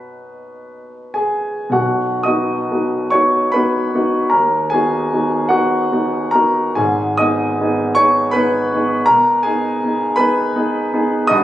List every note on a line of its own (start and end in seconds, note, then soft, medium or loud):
0.00 1.68 B2 soft
0.00 1.70 B3 soft
0.00 1.71 D#4 soft
0.00 1.71 F#4 soft
0.00 1.17 B4 medium
1.14 1.70 G#4 soft
1.14 1.74 G#5 medium
1.69 2.22 B2 medium
1.69 2.21 F#4 medium
1.69 2.25 F#5 medium
1.75 2.24 B1 soft
2.23 2.68 B3 soft
2.23 3.09 D#5 medium
2.23 3.13 D#6 medium
2.28 2.69 D#4 soft
2.28 2.69 F#4 soft
2.71 3.10 B3 soft
2.71 3.10 D#4 soft
2.71 3.10 F#4 soft
3.10 3.51 B3 soft
3.10 3.51 D#4 soft
3.10 3.51 C#5 medium
3.10 3.53 C#6 medium
3.15 3.51 F#4 soft
3.52 4.29 B4 medium
3.52 4.33 B5 medium
3.56 3.91 B3 soft
3.56 3.91 D#4 soft
3.56 3.91 F#4 soft
3.95 4.30 B3 soft
3.95 4.31 D#4 soft
3.95 4.31 F#4 soft
4.30 4.72 D#2 medium
4.30 4.70 A#4 medium
4.30 4.72 A#5 medium
4.70 5.10 B3 soft
4.70 5.47 G#4 medium
4.70 5.51 G#5 medium
4.74 5.10 D#4 soft
4.74 5.10 F#4 soft
5.13 5.49 B3 soft
5.13 5.49 D#4 soft
5.13 5.49 F#4 soft
5.49 5.91 F#4 medium
5.49 6.33 F#5 medium
5.53 5.89 B3 soft
5.53 5.89 D#4 soft
5.92 6.31 B3 soft
5.92 6.32 D#4 soft
5.92 6.32 F#4 soft
6.31 6.76 B3 soft
6.31 6.76 D#4 soft
6.31 6.75 A#4 medium
6.31 6.78 A#5 medium
6.35 6.76 F#4 soft
6.75 7.20 G#1 medium
6.75 7.19 G#2 medium
6.75 7.17 G#4 medium
6.75 7.20 G#5 medium
7.17 7.56 B3 soft
7.17 7.57 D#4 soft
7.17 7.93 D#5 medium
7.17 7.97 D#6 loud
7.22 7.57 G#4 soft
7.60 7.95 B3 soft
7.60 7.95 D#4 soft
7.60 7.96 G#4 soft
7.95 8.32 C#5 medium
7.95 8.34 C#6 loud
7.99 8.32 B3 medium
7.99 8.33 D#4 medium
7.99 8.33 G#4 medium
8.31 8.69 B3 medium
8.31 9.04 B4 medium
8.31 9.07 B5 loud
8.36 8.69 D#4 medium
8.36 8.69 G#4 medium
8.72 9.06 B3 medium
8.72 9.06 D#4 medium
8.72 9.06 G#4 medium
9.06 9.45 B2 medium
9.06 9.42 A#4 medium
9.06 9.45 A#5 loud
9.43 9.79 B3 medium
9.43 9.80 D#4 medium
9.43 9.83 G#4 medium
9.43 10.18 G#5 loud
9.84 10.16 B3 medium
9.84 10.17 D#4 soft
9.84 10.17 G#4 medium
10.16 10.52 B3 medium
10.16 10.52 D#4 medium
10.16 11.26 B4 medium
10.16 11.29 B5 loud
10.20 10.53 G#4 medium
10.56 10.89 B3 medium
10.56 10.89 D#4 medium
10.56 10.90 G#4 medium
10.94 11.28 B3 medium
10.94 11.28 D#4 medium
10.94 11.29 G#4 medium
11.27 11.44 G1 medium
11.27 11.44 G2 medium
11.27 11.44 D#5 medium
11.27 11.44 D#6 loud